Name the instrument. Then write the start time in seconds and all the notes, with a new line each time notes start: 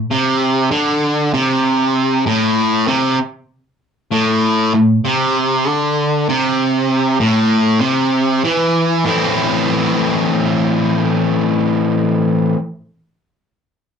distorted electric guitar
0.11 C3
0.71 D3
1.34 C3
2.26 A2
2.88 C3
4.11 A2
4.74 A2
5.05 C3
5.67 D3
6.29 C3
7.20 A2
7.81 C3
8.45 E3
9.04 A2 E3 A3 C4
9.09 E4